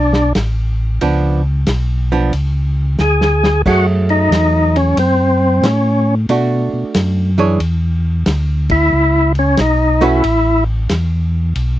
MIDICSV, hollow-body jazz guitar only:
0, 0, Header, 1, 2, 480
1, 0, Start_track
1, 0, Key_signature, 3, "major"
1, 0, Tempo, 658617
1, 737, Time_signature, 4, 2, 24, 8
1, 8595, End_track
2, 0, Start_track
2, 0, Title_t, "Hollow-body jazz guitar"
2, 0, Program_c, 0, 26
2, 740, Note_on_c, 0, 53, 52
2, 742, Note_on_c, 0, 59, 57
2, 747, Note_on_c, 0, 62, 67
2, 1025, Note_off_c, 0, 53, 0
2, 1026, Note_off_c, 0, 59, 0
2, 1028, Note_off_c, 0, 62, 0
2, 1545, Note_on_c, 0, 53, 57
2, 1545, Note_on_c, 0, 59, 60
2, 1551, Note_on_c, 0, 62, 59
2, 1686, Note_off_c, 0, 53, 0
2, 1687, Note_off_c, 0, 59, 0
2, 1690, Note_off_c, 0, 62, 0
2, 2666, Note_on_c, 0, 54, 61
2, 2669, Note_on_c, 0, 57, 54
2, 2677, Note_on_c, 0, 68, 60
2, 4007, Note_off_c, 0, 54, 0
2, 4008, Note_off_c, 0, 57, 0
2, 4012, Note_off_c, 0, 68, 0
2, 4589, Note_on_c, 0, 57, 53
2, 4590, Note_on_c, 0, 62, 52
2, 4596, Note_on_c, 0, 66, 58
2, 5320, Note_off_c, 0, 57, 0
2, 5320, Note_off_c, 0, 62, 0
2, 5323, Note_off_c, 0, 66, 0
2, 5378, Note_on_c, 0, 52, 62
2, 5382, Note_on_c, 0, 62, 54
2, 5386, Note_on_c, 0, 68, 60
2, 5389, Note_on_c, 0, 73, 56
2, 5524, Note_off_c, 0, 52, 0
2, 5527, Note_off_c, 0, 62, 0
2, 5529, Note_off_c, 0, 68, 0
2, 5530, Note_off_c, 0, 73, 0
2, 7296, Note_on_c, 0, 57, 58
2, 7300, Note_on_c, 0, 61, 65
2, 7302, Note_on_c, 0, 66, 68
2, 7304, Note_on_c, 0, 71, 62
2, 7443, Note_off_c, 0, 57, 0
2, 7445, Note_off_c, 0, 61, 0
2, 7446, Note_off_c, 0, 66, 0
2, 7447, Note_off_c, 0, 71, 0
2, 8595, End_track
0, 0, End_of_file